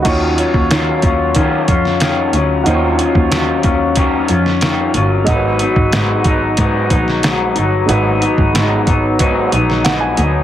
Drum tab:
CC |x---------------|----------------|----------------|----------------|
HH |x-x-x-x-x-x-x-x-|x-x-x-x-x-x-x-x-|x-x-x-x-x-x-x-x-|x-x-x-x-x-x-x-x-|
SD |----o------oo---|----o------oo---|----o------oo---|----o------oo---|
BD |o--o--o-o-o-----|---o--o-o-------|o--o--o-o-o-----|---o--o-o-------|